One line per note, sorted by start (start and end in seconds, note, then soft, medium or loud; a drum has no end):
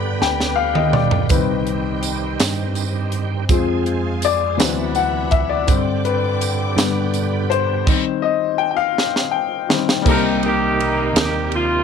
0.00 0.18 G2 medium
0.00 1.27 D3 medium
0.00 1.33 D3 soft
0.00 1.27 G3 medium
0.00 1.32 G3 soft
0.00 1.27 B3 medium
0.00 1.33 B3 medium
0.00 1.27 G4 medium
0.00 1.28 B4 medium
0.00 0.93 D5 medium
0.00 1.27 D5 medium
0.00 3.45 G5 medium
0.00 1.28 B5 medium
0.21 1.27 D2 medium
0.21 0.60 G5 medium
0.21 snare soft
0.40 snare soft
0.56 0.74 F5 loud
0.74 0.94 D#5 medium
0.74 mid tom medium
0.93 1.32 D5 medium
0.93 mid tom medium
1.11 floor tom medium
1.29 2.36 C2 medium
1.29 3.45 D#3 medium
1.29 2.36 D#3 medium
1.29 3.44 G3 medium
1.29 2.37 G3 soft
1.29 3.44 C4 medium
1.29 2.36 C4 medium
1.29 4.56 C4 medium
1.29 3.45 G4 medium
1.29 1.64 B4 medium
1.29 3.47 D#5 medium
1.29 kick loud
1.29 closed hi-hat medium
1.29 tambourine soft
1.67 closed hi-hat soft
2.03 closed hi-hat medium
2.03 tambourine soft
2.40 3.45 G2 medium
2.40 snare loud
2.40 closed hi-hat medium
2.40 tambourine medium
2.75 closed hi-hat soft
2.75 tambourine soft
3.12 closed hi-hat soft
3.49 4.54 F2 medium
3.49 4.55 F3 medium
3.49 4.59 F3 medium
3.49 4.55 G#3 soft
3.49 4.59 G#3 medium
3.49 4.55 C4 medium
3.49 4.59 C4 medium
3.49 3.57 G4 medium
3.49 4.57 F5 medium
3.49 4.57 G#5 medium
3.49 kick loud
3.49 closed hi-hat medium
3.49 tambourine soft
3.58 4.63 G#4 medium
3.86 closed hi-hat soft
4.22 4.92 D5 loud
4.22 closed hi-hat medium
4.22 tambourine medium
4.57 5.63 D2 medium
4.57 5.68 C3 medium
4.57 5.06 E3 medium
4.57 5.68 E3 medium
4.57 5.06 F#3 medium
4.57 5.07 B3 medium
4.57 5.07 C4 medium
4.57 5.68 F#4 medium
4.57 5.68 B4 medium
4.57 5.67 E5 medium
4.57 5.67 F#5 medium
4.57 5.66 B5 medium
4.57 snare loud
4.57 closed hi-hat medium
4.57 tambourine medium
4.95 5.29 F#5 loud
4.95 closed hi-hat soft
4.95 tambourine medium
5.31 5.50 E5 medium
5.31 kick medium
5.31 closed hi-hat soft
5.49 6.06 D5 medium
5.67 6.73 G2 medium
5.67 6.72 D3 medium
5.67 6.78 D3 medium
5.67 6.73 G3 soft
5.67 6.77 G3 medium
5.67 5.75 B3 soft
5.67 6.73 C4 medium
5.67 6.78 G4 medium
5.67 6.76 D5 medium
5.67 7.84 G5 medium
5.67 7.84 D6 medium
5.67 kick loud
5.67 closed hi-hat medium
5.67 tambourine medium
5.76 6.81 C4 medium
6.05 6.38 B4 medium
6.05 closed hi-hat soft
6.41 closed hi-hat medium
6.41 tambourine soft
6.76 7.82 G2 medium
6.76 7.25 D3 medium
6.76 7.26 G3 medium
6.76 7.88 G3 medium
6.76 7.26 B3 medium
6.76 7.88 G4 medium
6.76 7.86 D5 medium
6.76 7.86 B5 medium
6.76 snare loud
6.76 closed hi-hat medium
6.76 tambourine medium
6.80 7.88 D3 medium
7.14 closed hi-hat soft
7.14 tambourine medium
7.50 8.19 C5 loud
7.50 closed hi-hat soft
7.86 8.92 D#3 medium
7.86 8.92 G3 soft
7.86 8.92 C4 medium
7.86 kick loud
7.86 crash medium
8.22 8.56 D#5 medium
8.58 8.69 G5 loud
8.71 8.78 G5 medium
8.77 9.28 F5 loud
8.98 snare medium
9.16 snare medium
9.31 9.66 G5 medium
9.69 10.01 D#3 medium
9.69 10.00 G3 soft
9.69 10.02 C4 medium
9.69 snare medium
9.89 snare medium
10.02 11.11 C2 loud
10.02 11.10 C3 medium
10.02 11.84 D#3 medium
10.02 11.84 G3 medium
10.02 11.84 A#3 medium
10.02 11.84 C4 medium
10.02 11.84 D#4 medium
10.02 11.84 G4 medium
10.06 10.43 D#4 medium
10.06 10.44 G4 medium
10.06 10.13 A4 medium
10.06 10.24 A#4 medium
10.06 kick loud
10.06 crash medium
10.14 11.84 A#4 medium
10.43 11.48 A#3 medium
10.43 11.48 D#4 medium
10.43 11.12 G4 medium
10.43 ride soft
10.80 ride soft
11.13 11.83 D#2 medium
11.13 snare loud
11.13 ride medium
11.20 11.51 G4 medium
11.52 ride soft
11.56 11.84 F4 medium